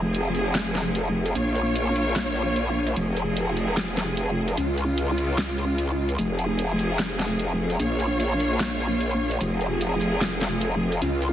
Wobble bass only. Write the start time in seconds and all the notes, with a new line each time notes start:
Already playing: F1
1.35 A#1
2.96 F1
4.57 C#2
6.19 F1
7.80 A#1
9.41 F1
11.02 C#2